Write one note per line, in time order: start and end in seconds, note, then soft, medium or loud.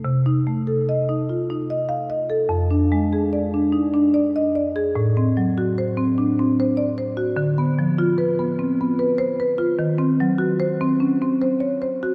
0.05 2.48 C3 loud
0.26 0.59 D#4 medium
0.47 0.80 A3 medium
0.67 1.00 A4 medium
0.89 1.21 D#5 medium
1.09 1.42 D#4 medium
1.29 1.50 F4 medium
1.50 1.83 D#4 medium
1.70 2.03 D#5 medium
1.89 2.10 F5 medium
2.10 2.43 D#5 medium
2.30 2.51 A4 medium
2.49 4.90 F2 loud
2.71 3.04 D4 medium
2.92 3.25 G#3 medium
3.13 3.45 G#4 medium
3.33 3.65 D5 medium
3.54 3.86 D4 medium
3.72 3.93 D#4 medium
3.94 4.26 D4 medium
4.14 4.47 D5 medium
4.36 4.55 D#5 medium
4.55 4.88 D5 medium
4.76 4.96 G#4 medium
4.96 7.34 A2 loud
5.17 5.49 C4 medium
5.37 5.69 F#3 medium
5.58 5.89 F#4 medium
5.78 6.10 C5 medium
5.97 6.30 C4 medium
6.18 6.38 D4 medium
6.39 6.71 C4 medium
6.60 6.91 C5 loud
6.77 6.98 D5 medium
6.98 7.30 C5 medium
7.17 7.37 F#4 medium
7.37 9.73 D3 loud
7.58 7.90 B3 medium
7.79 8.10 F3 medium
7.98 8.30 F4 medium
8.18 8.50 B4 medium
8.39 8.70 B3 medium
8.59 8.78 C4 medium
8.81 9.11 B3 medium
8.99 9.30 B4 loud
9.18 9.38 C5 loud
9.40 9.71 B4 medium
9.58 9.78 F4 medium
9.79 12.15 D#3 loud
9.98 10.30 C4 medium
10.20 10.52 F#3 medium
10.38 10.71 F#4 medium
10.60 10.91 C5 medium
10.81 11.12 C4 medium
11.00 11.19 C#4 medium
11.22 11.52 C4 medium
11.42 11.72 C5 loud
11.60 11.80 C#5 medium
11.82 12.13 C5 medium
12.03 12.15 F#4 medium